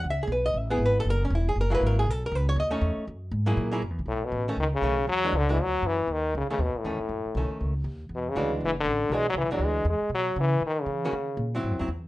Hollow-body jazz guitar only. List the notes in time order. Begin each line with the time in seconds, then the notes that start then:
0.10 E5
0.23 G#4
0.32 B4
0.46 D#5
0.58 E5
0.70 B3 E4 G#4
0.86 B4
1.00 A4
1.10 A#4
1.25 C#4
1.35 E4
1.49 G#4
1.61 A#4
1.70 F#3 A#3 E4 G#4
1.75 B4
1.86 A#4
1.99 G#4
2.11 A4
2.26 A#4
2.35 B4
2.49 C#5
2.60 D#5
2.71 A3 C#4 D#4
3.46 F#3 A#3 E4 G#4
3.71 F#3 A#3 E4 G#4
4.48 D#3 A3 C#4
4.83 D#3 A3 C#4
5.24 E3 G#3 D4 F#4
5.49 E3 G#3 D4 F#4
6.50 D#3 A3 C#4
6.85 D#3 A3 C#4
7.37 D#3 A3 C#4
8.36 E3 G#3 D4 F#4
9.12 E3 G#3 D4 F#4
9.51 E3 G#3 D4 F#4
11.05 D#3 A#3 C#4 F#4
11.55 F#3 C4 E4
11.79 F#3 C4 E4